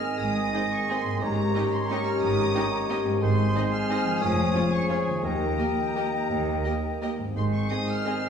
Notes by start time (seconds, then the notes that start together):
Already playing: G#2 D#3 G#3 C4 D#4 G#4 D#5 G#5 F6
0.20 G#1 G#2 D#6
0.54 C4 D#4 G#4 D#5
0.72 C#6
0.89 C4 D#4 G#4 D#5 C6
1.04 G#2
1.09 A#3
1.13 C#4
1.18 G#2 C#4 G4
1.22 G#1 D#3 G4 C#5 A#5
1.55 C#4 D#4 G4 D#5
1.72 C6
1.90 C#4 D#4 G4 D#5 C#6
2.06 F6
2.21 G#1 G#2 D#6
2.55 C#4 D#4 G4 D#5
2.89 C#4 D#4 G4 D#5
3.05 G#2
3.09 G#3
3.14 C4
3.18 G#4 G#5 C6
3.22 G#1 G#2 D#3 C4 G#4 C5
3.55 C4 D#4 G#4 D#5
3.73 F6
3.90 C4 D#4 G#4 D#5
4.04 F3
4.08 G#3
4.13 C#4
4.17 G#4
4.21 F1 F2 F3 C#4 C#5 D#6
4.54 C#4 F4 G#4 C#5
4.72 C#6
4.89 C#4 F4 G#4 C#5 G#5
5.06 D#3
5.10 A#3
5.15 D#4
5.19 G4
5.23 D#2 D#3 A#3 G4 A#4 D#5 G5 A#5
5.59 A#3 G4 A#4 D#5
5.95 A#3 G4 A#4 D#5
6.29 D#2
6.65 A#3 G4 A#4 D#5
7.02 A#3 G4 A#4 D#5
7.18 G#2
7.22 C4
7.27 D#4
7.31 G#4
7.36 G#1 G#2 D#3 C4 G#4 C5 G#5 C6
7.53 C#6
7.69 C4 G#4 D#5 D#6
7.88 F6
8.05 C4 G#4 D#5